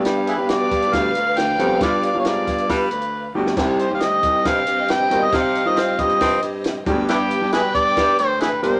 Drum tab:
CC |----------------|----------------|x---------------|----------------|
HH |x-x-x-xxx-x-x-x-|x-x-x-xxx-xx----|--x-x-x-x-x-x-x-|x-x-x-xxx-x-x-x-|
SD |o---o---o---o---|o---o---o------o|o---o---o---o---|o---o---o---o---|
BD |------o-o-------|o-----o-o-------|o-----o-o-------|o-----o-o-----o-|

CC |----------------|
HH |x-x-x-x-x-x-x-x-|
SD |o---o---o---o---|
BD |------o-o-------|